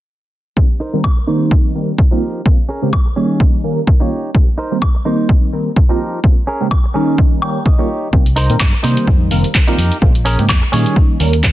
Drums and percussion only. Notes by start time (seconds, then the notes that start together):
0.57 kick
1.04 kick, high woodblock
1.51 kick
1.98 kick
2.46 kick
2.93 kick, high woodblock
3.40 kick
3.87 kick
4.35 kick
4.82 kick, high woodblock
5.29 kick
5.76 kick
6.24 kick
6.71 kick, high woodblock
7.18 kick
7.42 high woodblock
7.66 kick
8.13 kick
8.26 closed hi-hat
8.36 open hi-hat
8.50 closed hi-hat
8.60 kick, clap, high woodblock
8.84 open hi-hat
8.97 closed hi-hat
9.07 kick
9.31 open hi-hat
9.44 closed hi-hat
9.55 kick, clap
9.68 closed hi-hat
9.79 open hi-hat
9.92 closed hi-hat
10.02 kick
10.15 closed hi-hat
10.26 open hi-hat
10.39 closed hi-hat
10.49 kick, clap, high woodblock
10.73 open hi-hat
10.86 closed hi-hat
10.96 kick
11.20 open hi-hat
11.33 closed hi-hat
11.43 kick, clap